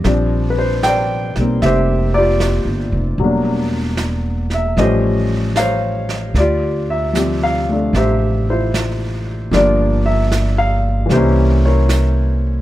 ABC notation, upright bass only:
X:1
M:4/4
L:1/8
Q:"Swing" 1/4=76
K:Dm
V:1 name="Upright bass" clef=bass
B,,,3 =B,,, F,,,2- (3F,,, G,,, F,,, | E,,,4 A,,,4 | D,,4 A,,,4 | G,,,4 C,,4 |]